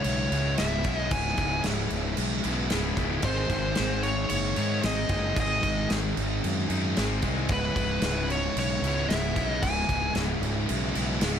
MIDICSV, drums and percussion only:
0, 0, Header, 1, 2, 480
1, 0, Start_track
1, 0, Key_signature, 4, "minor"
1, 0, Tempo, 531915
1, 1003, Time_signature, 4, 2, 24, 8
1, 10280, End_track
2, 0, Start_track
2, 0, Title_t, "Drums"
2, 38, Note_on_c, 9, 49, 86
2, 129, Note_off_c, 9, 49, 0
2, 288, Note_on_c, 9, 49, 67
2, 378, Note_off_c, 9, 49, 0
2, 520, Note_on_c, 9, 49, 83
2, 526, Note_on_c, 9, 38, 115
2, 610, Note_off_c, 9, 49, 0
2, 616, Note_off_c, 9, 38, 0
2, 760, Note_on_c, 9, 49, 67
2, 765, Note_on_c, 9, 36, 86
2, 850, Note_off_c, 9, 49, 0
2, 855, Note_off_c, 9, 36, 0
2, 1001, Note_on_c, 9, 49, 92
2, 1005, Note_on_c, 9, 36, 115
2, 1091, Note_off_c, 9, 49, 0
2, 1096, Note_off_c, 9, 36, 0
2, 1240, Note_on_c, 9, 49, 64
2, 1245, Note_on_c, 9, 36, 86
2, 1330, Note_off_c, 9, 49, 0
2, 1335, Note_off_c, 9, 36, 0
2, 1477, Note_on_c, 9, 49, 86
2, 1483, Note_on_c, 9, 38, 106
2, 1567, Note_off_c, 9, 49, 0
2, 1573, Note_off_c, 9, 38, 0
2, 1718, Note_on_c, 9, 49, 68
2, 1808, Note_off_c, 9, 49, 0
2, 1957, Note_on_c, 9, 49, 82
2, 2047, Note_off_c, 9, 49, 0
2, 2199, Note_on_c, 9, 49, 70
2, 2289, Note_off_c, 9, 49, 0
2, 2435, Note_on_c, 9, 49, 83
2, 2442, Note_on_c, 9, 38, 112
2, 2526, Note_off_c, 9, 49, 0
2, 2532, Note_off_c, 9, 38, 0
2, 2680, Note_on_c, 9, 36, 82
2, 2680, Note_on_c, 9, 49, 59
2, 2770, Note_off_c, 9, 36, 0
2, 2770, Note_off_c, 9, 49, 0
2, 2908, Note_on_c, 9, 49, 81
2, 2916, Note_on_c, 9, 36, 115
2, 2998, Note_off_c, 9, 49, 0
2, 3006, Note_off_c, 9, 36, 0
2, 3156, Note_on_c, 9, 36, 80
2, 3157, Note_on_c, 9, 49, 59
2, 3246, Note_off_c, 9, 36, 0
2, 3248, Note_off_c, 9, 49, 0
2, 3386, Note_on_c, 9, 49, 84
2, 3392, Note_on_c, 9, 38, 110
2, 3476, Note_off_c, 9, 49, 0
2, 3483, Note_off_c, 9, 38, 0
2, 3639, Note_on_c, 9, 49, 61
2, 3729, Note_off_c, 9, 49, 0
2, 3876, Note_on_c, 9, 49, 85
2, 3966, Note_off_c, 9, 49, 0
2, 4116, Note_on_c, 9, 49, 71
2, 4206, Note_off_c, 9, 49, 0
2, 4362, Note_on_c, 9, 49, 88
2, 4368, Note_on_c, 9, 38, 120
2, 4452, Note_off_c, 9, 49, 0
2, 4458, Note_off_c, 9, 38, 0
2, 4593, Note_on_c, 9, 49, 64
2, 4599, Note_on_c, 9, 36, 89
2, 4683, Note_off_c, 9, 49, 0
2, 4689, Note_off_c, 9, 36, 0
2, 4841, Note_on_c, 9, 36, 113
2, 4847, Note_on_c, 9, 49, 89
2, 4932, Note_off_c, 9, 36, 0
2, 4938, Note_off_c, 9, 49, 0
2, 5081, Note_on_c, 9, 36, 81
2, 5083, Note_on_c, 9, 49, 67
2, 5171, Note_off_c, 9, 36, 0
2, 5173, Note_off_c, 9, 49, 0
2, 5324, Note_on_c, 9, 49, 83
2, 5330, Note_on_c, 9, 38, 112
2, 5414, Note_off_c, 9, 49, 0
2, 5420, Note_off_c, 9, 38, 0
2, 5568, Note_on_c, 9, 49, 69
2, 5659, Note_off_c, 9, 49, 0
2, 5811, Note_on_c, 9, 49, 82
2, 5901, Note_off_c, 9, 49, 0
2, 6044, Note_on_c, 9, 49, 69
2, 6134, Note_off_c, 9, 49, 0
2, 6286, Note_on_c, 9, 49, 87
2, 6293, Note_on_c, 9, 38, 111
2, 6377, Note_off_c, 9, 49, 0
2, 6383, Note_off_c, 9, 38, 0
2, 6517, Note_on_c, 9, 49, 67
2, 6522, Note_on_c, 9, 36, 84
2, 6607, Note_off_c, 9, 49, 0
2, 6612, Note_off_c, 9, 36, 0
2, 6756, Note_on_c, 9, 49, 84
2, 6762, Note_on_c, 9, 36, 115
2, 6846, Note_off_c, 9, 49, 0
2, 6852, Note_off_c, 9, 36, 0
2, 7002, Note_on_c, 9, 36, 85
2, 7006, Note_on_c, 9, 49, 64
2, 7093, Note_off_c, 9, 36, 0
2, 7097, Note_off_c, 9, 49, 0
2, 7234, Note_on_c, 9, 49, 85
2, 7240, Note_on_c, 9, 38, 112
2, 7324, Note_off_c, 9, 49, 0
2, 7331, Note_off_c, 9, 38, 0
2, 7491, Note_on_c, 9, 49, 64
2, 7581, Note_off_c, 9, 49, 0
2, 7731, Note_on_c, 9, 49, 85
2, 7821, Note_off_c, 9, 49, 0
2, 7975, Note_on_c, 9, 49, 67
2, 8066, Note_off_c, 9, 49, 0
2, 8214, Note_on_c, 9, 49, 82
2, 8220, Note_on_c, 9, 38, 120
2, 8304, Note_off_c, 9, 49, 0
2, 8310, Note_off_c, 9, 38, 0
2, 8448, Note_on_c, 9, 36, 86
2, 8450, Note_on_c, 9, 49, 64
2, 8539, Note_off_c, 9, 36, 0
2, 8540, Note_off_c, 9, 49, 0
2, 8687, Note_on_c, 9, 36, 115
2, 8690, Note_on_c, 9, 49, 88
2, 8777, Note_off_c, 9, 36, 0
2, 8780, Note_off_c, 9, 49, 0
2, 8925, Note_on_c, 9, 36, 81
2, 8929, Note_on_c, 9, 49, 63
2, 9015, Note_off_c, 9, 36, 0
2, 9019, Note_off_c, 9, 49, 0
2, 9159, Note_on_c, 9, 49, 81
2, 9165, Note_on_c, 9, 38, 102
2, 9249, Note_off_c, 9, 49, 0
2, 9255, Note_off_c, 9, 38, 0
2, 9410, Note_on_c, 9, 49, 68
2, 9500, Note_off_c, 9, 49, 0
2, 9645, Note_on_c, 9, 49, 90
2, 9736, Note_off_c, 9, 49, 0
2, 9884, Note_on_c, 9, 49, 72
2, 9974, Note_off_c, 9, 49, 0
2, 10117, Note_on_c, 9, 49, 90
2, 10123, Note_on_c, 9, 38, 113
2, 10207, Note_off_c, 9, 49, 0
2, 10213, Note_off_c, 9, 38, 0
2, 10280, End_track
0, 0, End_of_file